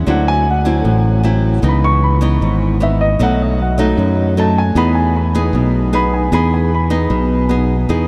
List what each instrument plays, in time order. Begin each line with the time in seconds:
0.06 fingered electric bass D2, nylon-string guitar D3 F#3 C4 E4, grand piano F#5
0.28 grand piano G#5
0.50 grand piano F#5
0.65 nylon-string guitar F#3 C4 E4
0.84 fingered electric bass A1, nylon-string guitar A2
1.23 nylon-string guitar F#3 C4 E4
1.62 fingered electric bass C#2, nylon-string guitar C#3 E3 B3 D#4
1.69 grand piano B5
1.84 grand piano C#6
2.04 grand piano B5
2.21 nylon-string guitar E3 B3 D#4
2.41 fingered electric bass G#1, nylon-string guitar G#2
2.80 nylon-string guitar E3 B3 D#4, grand piano E5
3.01 grand piano D#5
3.19 fingered electric bass B1, nylon-string guitar B2 F#3 A3 D#4, grand piano F#5
3.42 grand piano D#5
3.62 grand piano F#5
3.78 nylon-string guitar F#3 A3 D#4
3.97 fingered electric bass F#2, nylon-string guitar F#2
4.37 nylon-string guitar F#3 A3 D#4, grand piano A5
4.58 grand piano G#5
4.75 fingered electric bass E2, nylon-string guitar E3 B3 D#4 G#4, grand piano B5
4.95 grand piano G#5
5.16 grand piano B5
5.35 nylon-string guitar B3 D#4 G#4
5.53 fingered electric bass B1, nylon-string guitar B2
5.93 nylon-string guitar B3 D#4 G#4, grand piano B5
6.14 grand piano G#5
6.32 fingered electric bass E2, nylon-string guitar E3 B3 D#4 G#4, grand piano B5
6.54 grand piano G#5
6.75 grand piano B5
6.90 nylon-string guitar B3 D#4 G#4
7.10 fingered electric bass B1, nylon-string guitar B2
7.49 nylon-string guitar B3 D#4 G#4
7.89 fingered electric bass E2, nylon-string guitar E3 B3 D#4 G#4